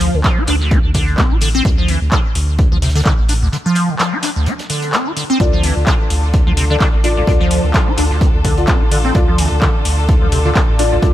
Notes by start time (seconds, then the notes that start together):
Already playing: D2 F3
0.00 closed hi-hat, open hi-hat
0.14 D2 D3
0.24 F3, kick, snare, clap, closed hi-hat
0.38 F4
0.47 D2 D4, clap, closed hi-hat, open hi-hat
0.61 D2, snare
0.71 D4, kick, closed hi-hat
0.84 D2
0.94 D3, kick, closed hi-hat, open hi-hat
1.08 closed hi-hat
1.18 C4, kick, snare, clap, closed hi-hat
1.31 A1 F4
1.41 D3, closed hi-hat, open hi-hat
1.55 C4
1.65 D2 D3, kick, closed hi-hat
1.78 F3
1.88 E3, closed hi-hat, open hi-hat
2.02 D2
2.12 D3, kick, snare, clap, closed hi-hat
2.35 D2, closed hi-hat, open hi-hat
2.59 kick, closed hi-hat
2.72 D2 F3
2.82 C3, snare, closed hi-hat, open hi-hat
2.89 snare, closed hi-hat
2.95 D3, snare, closed hi-hat
3.00 snare, closed hi-hat
3.05 D3, kick, snare, clap, closed hi-hat
3.19 A1
3.29 D4, closed hi-hat, open hi-hat
3.42 D2
3.52 D3, closed hi-hat
3.66 F3
3.75 closed hi-hat, open hi-hat
3.89 D3
3.99 F3, snare, clap, closed hi-hat
4.13 F4
4.22 D4, snare, clap, closed hi-hat, open hi-hat
4.36 D2
4.46 D4, closed hi-hat
4.59 snare, closed hi-hat
4.70 D3, open hi-hat
4.82 closed hi-hat
4.93 C4, snare, clap, closed hi-hat
5.06 F4
5.16 D3, closed hi-hat, open hi-hat
5.30 C4
5.40 D2 D3 D4 F4 A4 D5, kick, closed hi-hat
5.53 F3
5.63 E3, closed hi-hat, open hi-hat
5.77 D2
5.87 D3, kick, snare, clap, closed hi-hat
6.10 D2, closed hi-hat, open hi-hat
6.34 kick, closed hi-hat
6.47 D2 F3
6.57 C3, closed hi-hat, open hi-hat
6.70 D3 F4 A4 D5
6.80 D3, kick, snare, clap, closed hi-hat
6.94 A1
7.04 D4 F4 A4 D5, closed hi-hat, open hi-hat
7.17 D2 F4 A4 D5
7.27 D2 D3 F4 A4 D5, kick, closed hi-hat
7.41 F3
7.51 closed hi-hat, open hi-hat
7.64 D2 D3
7.74 F3, kick, snare, clap, closed hi-hat
7.87 F4
7.97 D2 D4, clap, closed hi-hat, open hi-hat
8.10 D2, snare
8.21 D4, kick, closed hi-hat
8.34 D2
8.45 D3, kick, closed hi-hat, open hi-hat
8.57 F4 A4 D5, closed hi-hat
8.67 C4, kick, snare, clap, closed hi-hat
8.81 A1 F4
8.91 D3 F4 A4 D5, closed hi-hat, open hi-hat
9.05 C4
9.15 D2 D3 F4 A4 D5, kick, closed hi-hat
9.28 F3
9.38 E3, closed hi-hat, open hi-hat
9.52 D2
9.62 D3, kick, snare, clap, closed hi-hat
9.85 D2, closed hi-hat, open hi-hat
10.09 kick, closed hi-hat
10.22 D2 F3
10.32 C3, closed hi-hat, open hi-hat
10.45 D3 F4 A4 D5
10.55 D3, kick, snare, clap, closed hi-hat
10.69 A1
10.79 D4 F4 A4 D5, closed hi-hat, open hi-hat
10.92 D2 F4 A4 D5
11.02 D2 D3 F4 A4 D5, kick, closed hi-hat